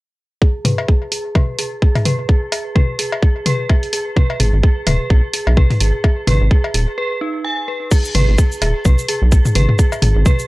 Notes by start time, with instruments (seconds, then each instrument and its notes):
0.41 synth bell G#4, kick
0.65 synth bell B4, mid tom, open hi-hat, high tom
0.78 cowbell
0.88 synth bell G#4, kick
1.12 synth bell G#4, open hi-hat
1.35 synth bell B4, kick, high tom, cowbell
1.59 synth bell G#4, open hi-hat
1.82 synth bell G#4, kick
1.95 mid tom, open hi-hat, cowbell
2.05 synth bell B4, open hi-hat, high tom
2.29 synth bell G#4, kick
2.52 synth bell G#4, open hi-hat, cowbell
2.76 synth bell B4, kick, high tom
2.99 synth bell G#4, open hi-hat
3.13 cowbell
3.23 synth bell G#4, kick
3.46 synth bell B4, open hi-hat, high tom
3.69 synth bell G#4, kick, cowbell
3.83 open hi-hat
3.93 synth bell G#4, open hi-hat
4.16 synth bell B4, kick, high tom
4.30 cowbell
4.40 analog synth bass G#1, synth bell G#4, mid tom, open hi-hat
4.53 analog synth bass G#1
4.63 synth bell G#4, kick
4.87 analog synth bass D#1, synth bell B4, open hi-hat, high tom, cowbell
5.10 analog synth bass B1, synth bell G#4, kick
5.34 synth bell G#4, open hi-hat
5.47 analog synth bass B1, cowbell
5.57 synth bell B4, kick, high tom
5.70 mid tom, open hi-hat
5.80 analog synth bass G#1, synth bell G#4, open hi-hat
6.04 synth bell G#4, kick, cowbell
6.27 analog synth bass G#1, synth bell B4, mid tom, open hi-hat, high tom
6.41 analog synth bass G#1
6.51 synth bell G#4, kick
6.64 cowbell
6.74 analog synth bass D#1, synth bell G#4, open hi-hat
6.98 synth bell B4
7.21 synth bell D#4
7.44 synth bell G#5
7.68 synth bell B4
7.91 synth bell G#4, kick, crash, shaker
8.05 shaker
8.15 analog synth bass G#1, synth bell B4, open hi-hat, high tom
8.28 analog synth bass G#1
8.38 synth bell G#4, kick, shaker
8.52 shaker
8.62 analog synth bass D#1, synth bell G#4, open hi-hat, cowbell
8.85 analog synth bass B1, synth bell B4, kick, high tom, shaker
8.99 shaker
9.09 synth bell G#4, open hi-hat
9.22 analog synth bass B1
9.32 synth bell G#4, kick, shaker
9.45 mid tom, shaker
9.55 analog synth bass G#1, synth bell B4, open hi-hat, high tom
9.69 mid tom
9.79 synth bell G#4, kick, shaker
9.92 cowbell, shaker
10.02 analog synth bass G#1, synth bell G#4, mid tom, open hi-hat
10.16 analog synth bass G#1
10.26 synth bell B4, kick, high tom, shaker
10.39 shaker